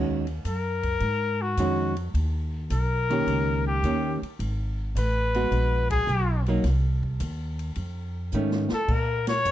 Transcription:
Already playing: D#2 D#3 G#3 C#4 F#4
0.27 ride
0.45 F#2 A#4, kick, hi-hat pedal, ride
0.83 kick, ride
1.00 G#2, kick, ride
1.42 F#4
1.57 F2 D#3 G#3 C#4 F#4, kick, hi-hat pedal, ride
1.96 ride
2.14 D#2, kick, ride
2.70 B1 A#4, kick, hi-hat pedal, ride
3.10 D#3 A#3 C#4 G4, ride
3.27 C#2, kick, ride
3.67 G4
3.83 D#2 D#3 A#3 C#4 G4, kick, hi-hat pedal, ride
4.22 muted upright bass stroke, ride
4.39 G#1, kick, ride
4.95 A1 B4, kick, hi-hat pedal, ride
5.34 G#3 B3 F#4, ride
5.51 A#1, ride
5.90 G#4, kick, ride
6.07 B1, hi-hat pedal
6.46 F#3 A#3 D#4, ride
6.64 C2, kick, snare, ride
7.03 kick
7.20 D#2, kick, hi-hat pedal, ride
7.59 ride
7.76 F2, kick, ride
8.32 G#2 D#3 A3 C#4, hi-hat pedal
8.51 snare
8.69 muted upright bass stroke, snare
8.74 A4
8.88 A#2, kick, crash
8.93 A#4
9.27 C#5, snare, ride
9.45 F2, hi-hat pedal

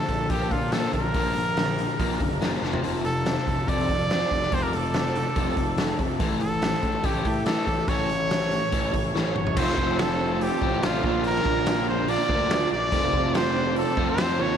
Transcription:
Already playing: A4
0.08 A#1 A#2 D3, kick, open hi-hat
0.30 A#1 A#2 D3 A#3 G4, kick, open hi-hat
0.51 A#2 D3 F4, kick, open hi-hat
0.72 A#2 D3 A#3 A4, snare, open hi-hat
0.93 A#1 A#2 D3 A#4, kick, open hi-hat
1.14 A#1 A#2 D3 A#3, kick, open hi-hat
1.36 A#2 D3, open hi-hat
1.57 A#2 D3, snare, open hi-hat
1.78 A#2 D3, open hi-hat
1.99 A#1 A#2 D3 A#3, kick, open hi-hat
2.20 F#1 A#2 D3, kick, open hi-hat
2.41 A#2 D3 A#3, snare, open hi-hat
2.62 F1 F2 C3 F3, snare
2.73 floor tom
2.82 F1 F2 C3 F3, open hi-hat
3.04 F2 C3 A4, open hi-hat
3.24 F2 C3, snare, open hi-hat
3.38 snare
3.46 F1 F2 C3, kick, open hi-hat
3.67 F1 F2 C3 F3 D5, kick, open hi-hat
3.89 F2 C3, kick, open hi-hat
4.10 F2 C3 F3, snare, open hi-hat
4.31 F1 F2 C3, kick, open hi-hat
4.43 snare
4.52 F1 F2 C3 F3 C5, kick, open hi-hat
4.63 A#4
4.73 F2 C3 A4, open hi-hat
4.94 F2 C3, snare, open hi-hat
5.15 F2 C3, open hi-hat
5.35 F1 F2 C3 F3, kick, open hi-hat
5.56 F1 F2 C3, kick, open hi-hat
5.77 F2 C3 F3, snare, open hi-hat
5.99 F1 F2 C3, kick, open hi-hat
6.20 A1 A2 E3 A3, kick, open hi-hat
6.40 A2 E3 A4, open hi-hat
6.62 A2 E3, snare, open hi-hat
6.73 snare
6.83 A1 A2 E3, kick, open hi-hat
7.03 A1 A2 E3 A3 G4, kick, open hi-hat
7.25 A2 E3, kick, open hi-hat
7.46 A2 E3 A3 A4, snare, open hi-hat
7.67 A1 A2 E3, kick, open hi-hat
7.88 A1 A2 E3 A3 C#5, kick, open hi-hat
8.09 A2 E3, open hi-hat
8.30 A2 E3, snare, open hi-hat
8.52 A2 E3, open hi-hat
8.72 A1 A2 E3 A3, kick, open hi-hat
8.93 A1 A2 E3, kick, open hi-hat
9.15 A1 A2 E3 A3, snare
9.36 G1 A2 E3 C#5, mid tom
9.47 floor tom
9.56 F1 F2 C3 F3 A3 C4 F4 C5, kick, crash
9.68 snare
9.78 F1, kick
9.99 A4, snare, open hi-hat
10.41 G4, open hi-hat
10.61 A1 F2 C3 F3 A3 C4 F4, kick
10.81 F2 C3 F3 A3 C4 F4, snare, open hi-hat
11.02 A#1 A#2 D3 F3 A#3 D4 F4, kick
11.24 A#4, open hi-hat
11.35 snare
11.45 A#1, kick
11.66 snare, open hi-hat
11.89 C5
12.07 A#2 D3 A#3 D4 F4 D5, open hi-hat
12.29 D2 A#2 D3 A#3 D4 F4, kick
12.49 F3 A#3 D4 F4, snare, open hi-hat
12.72 A#1 D5
12.92 F1 F2 C3 F3 A3 C4 F4, kick, open hi-hat
13.13 F1, kick
13.34 C5, snare, open hi-hat
13.76 A4, open hi-hat
13.97 F2 C3 F3 A3 C4 F4, kick
14.10 C5
14.18 F2 C3 F3 A3 C4 F4, snare, open hi-hat
14.39 D#2 A3 C4 F4 C#5

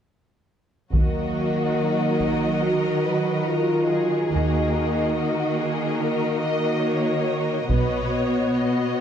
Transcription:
0.93 D#2 D#3 F#3 A#3 F#4 A#4 D#5, taiko
2.20 taiko
2.62 F#4 A#4
3.04 B4
3.45 F4 A#4
3.89 G#4
4.31 D#2 D#3 A#3 D#4 F#4 A#4 D#5
5.15 F#4
5.58 G#4
5.98 A#3 A#4
6.42 D#5
6.86 C#5
7.69 B1 B2 B3 F#4 B4 C#5, taiko
8.12 C#5
8.54 C#5 D#5
8.97 C#5

